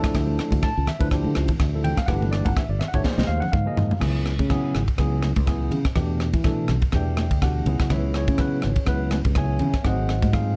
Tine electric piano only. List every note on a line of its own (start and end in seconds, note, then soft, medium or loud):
0.00 0.68 F3 medium
0.00 0.68 A3 medium
0.00 0.68 D4 medium
0.00 0.68 E4 medium
0.00 0.68 A4 loud
0.63 0.87 A5 medium
0.88 1.02 E5 medium
0.99 1.07 F3 medium
0.99 1.07 A3 medium
0.99 1.07 D4 medium
0.99 1.07 E4 medium
0.99 1.08 B4 loud
1.10 1.50 F3 medium
1.10 1.50 A3 medium
1.10 1.51 D4 medium
1.10 1.51 E4 medium
1.10 1.51 G4 medium
1.74 1.96 F3 medium
1.74 1.96 A3 medium
1.74 1.97 D4 medium
1.74 1.97 E4 medium
1.74 1.97 A4 medium
1.84 1.97 G5 medium
1.97 2.08 F5 medium
2.06 2.62 E3 medium
2.06 2.62 A3 medium
2.06 2.62 D4 medium
2.06 2.62 G4 medium
2.06 2.62 B4 medium
2.06 2.20 F#5 medium
2.21 2.32 A4 medium
2.31 2.45 D5 medium
2.45 2.56 F#5 medium
2.57 2.70 E5 medium
2.70 2.80 D5 medium
2.79 2.88 E5 medium
2.88 2.97 F#5 medium
2.94 3.01 E3 medium
2.94 3.01 A3 medium
2.94 3.01 D4 medium
2.94 3.01 G4 medium
2.94 3.01 C#5 loud
2.94 3.05 E5 medium
3.04 3.44 F3 medium
3.04 3.44 A#3 medium
3.04 3.44 D#4 medium
3.04 3.44 G#4 medium
3.04 3.44 C5 medium
3.04 3.18 D5 medium
3.17 3.28 D#5 medium
3.27 3.41 F5 medium
3.40 3.52 F#5 medium
3.52 3.98 F5 medium
3.66 3.89 F3 medium
3.66 3.89 A#3 medium
3.66 3.89 D#4 medium
3.66 3.90 G#4 medium
3.66 3.90 D#5 medium
3.99 4.32 C#3 medium
3.99 4.32 F#3 medium
3.99 4.32 B3 medium
3.99 4.32 E4 medium
3.99 4.32 G#4 medium
4.49 4.81 C#3 medium
4.49 4.81 F#3 medium
4.49 4.81 B3 medium
4.49 4.82 E4 medium
4.49 4.82 G#4 loud
4.98 5.30 C#3 medium
4.98 5.30 F#3 medium
4.98 5.30 B3 medium
4.98 5.30 E4 medium
4.98 5.31 G#4 medium
5.46 5.78 C#3 medium
5.46 5.78 F#3 medium
5.46 5.79 B3 medium
5.46 5.78 E4 medium
5.46 5.79 G#4 medium
5.95 6.27 B2 medium
5.95 6.27 E3 medium
5.95 6.28 A3 medium
5.95 6.28 D4 medium
5.95 6.27 G4 medium
6.44 6.76 B2 medium
6.44 6.76 E3 medium
6.44 6.76 A3 medium
6.44 6.76 D4 medium
6.44 6.76 A4 medium
6.92 7.24 B2 medium
6.92 7.24 E3 medium
6.92 7.24 A3 medium
6.92 7.25 D4 medium
6.92 7.25 G4 medium
6.92 7.39 D5 medium
6.92 7.40 E5 medium
6.92 7.40 G5 medium
7.42 7.66 B2 medium
7.42 7.66 E3 medium
7.42 7.67 A3 medium
7.42 7.67 D4 medium
7.42 7.88 F#4 medium
7.42 7.67 G4 medium
7.42 7.87 F#5 medium
7.65 8.25 C#3 medium
7.65 8.25 F#3 medium
7.65 8.26 B3 medium
7.65 7.90 E4 medium
7.65 8.16 G#4 medium
7.92 8.15 E4 medium
7.92 8.15 B4 medium
7.92 8.15 C#5 medium
7.92 8.15 E5 medium
8.16 8.85 C#4 medium
8.16 8.38 E4 medium
8.16 8.85 G#4 medium
8.16 8.85 C#5 medium
8.38 8.69 C#3 medium
8.38 8.70 F#3 medium
8.38 8.70 B3 medium
8.38 8.70 E4 medium
8.38 8.70 B4 medium
8.86 9.18 C#3 medium
8.86 9.18 F#3 medium
8.86 9.18 B3 medium
8.86 9.19 E4 medium
8.86 9.19 B4 medium
9.36 9.67 C#3 medium
9.36 9.67 F#3 medium
9.36 9.68 B3 medium
9.36 9.68 E4 medium
9.36 9.68 G#4 medium
9.36 9.82 C#5 medium
9.36 9.82 E5 medium
9.36 9.82 G#5 medium
9.83 10.15 F#3 medium
9.83 10.15 A3 medium
9.83 10.15 C4 medium
9.83 10.16 D#4 medium
9.83 10.31 F#4 medium
9.83 10.16 G#4 medium
9.83 10.31 C5 medium
9.83 10.31 F#5 medium
9.88 10.31 D#5 medium
10.32 10.56 F#3 medium
10.32 10.56 A3 medium
10.32 10.56 C4 medium
10.32 10.55 D#4 medium
10.32 10.56 F4 medium
10.32 10.56 G#4 medium
10.32 10.56 F5 medium